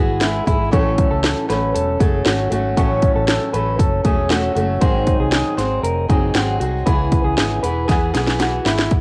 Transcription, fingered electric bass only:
Already playing: G#1
0.47 G#1
0.73 A1
1.11 C#2
1.50 A1
1.75 E1
2.00 F#1
2.26 G#1
2.51 G#1
2.77 A1
3.15 A1
3.54 A1
3.79 F#1
4.05 E1
4.56 F#1
4.82 G#1
5.19 C2
5.58 G#1
5.83 F1
6.09 F#1
6.35 G#1
6.60 C2
6.87 C#2
7.24 C#2
7.38 G#1
7.63 E1
7.89 E2
8.15 B1
8.65 G#1
8.91 A1

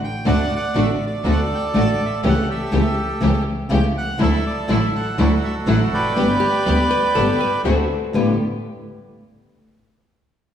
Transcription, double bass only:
0.26 D2
0.75 A1
1.25 D2
1.75 A1
2.24 C#2
2.73 C#2
3.22 C#2
3.71 C#2
4.21 D2
4.69 A1
5.18 D2
5.67 A1
5.93 F1
6.17 G1
6.67 D2
7.16 G1
7.65 D2
8.15 G1

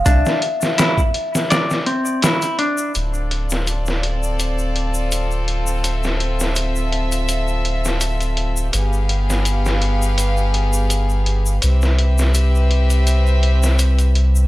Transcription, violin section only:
2.95 C4 F4 A4 D5
5.85 E5
8.74 B3 G4 G#4 F5
11.63 C4 G4 B4 E5

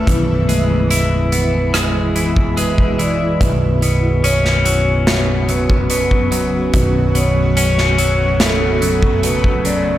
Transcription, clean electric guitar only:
0.07 E2
0.49 G#3
0.91 E4
1.32 B3
1.74 G#3
2.16 E3
2.57 G#3
2.99 E3
3.41 B1
3.83 B2
4.24 C#4
4.66 F#3
5.07 B2
5.49 F#2
5.90 B2
6.32 F#2
6.74 B1
7.15 B2
7.57 C#4
7.98 F#3
8.40 B2
8.82 F#2
9.23 B2
9.65 F#2

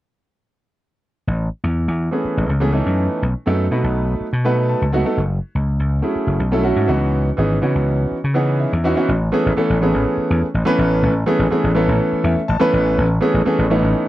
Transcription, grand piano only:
2.11 E3 A3 B3 C#4 G#4
2.60 E3 A3 B3 C#4 G#4
2.73 E3 A3 B3 C#4 D#4
3.46 F#3 A3 B3 D#4 A4
3.71 F#3 A3 B3 D#4 B4
4.44 F#3 A3 B3 D#4 B4 F#5
4.69 A5
4.92 F#3 A3 B3 D#4 F#4 F#5
5.04 F#3 A3 B3 D#4 A4
6.02 F#3 A3 C#4 E4 G#4
6.52 F#3 A3 C#4 E4 A4
6.63 F#3 A3 C#4 E4 F#4
6.87 E3 B3 C#4 D#4 F#4
7.37 E3 B3 C#4 D#4 G#4
7.61 E3 B3 C#4 D#4 F#4
8.34 E3 B3 C#4 D#4 G#4 F#5
8.59 E5
8.84 E3 B3 C#4 D#4 F#4 E5
8.96 E3 B3 C#4 D#4 F#4
9.32 E3 A3 B3 C#4 G#4
9.57 E3 A3 B3 C#4 A4
9.81 E3 A3 B3 C#4 G#4
10.65 E3 A3 B3 C#4 B4
11.26 E3 A3 B3 C#4 G#4
11.50 E3 A3 B3 C#4 G#4
11.75 E3 A3 B3 C#4 A4
12.25 E5
12.48 A5
12.60 E3 A3 B3 C#4 B4
13.21 E3 A3 B3 C#4 G#4
13.45 E3 A3 B3 C#4 G#4
13.70 E3 A3 B3 C#4 D#4

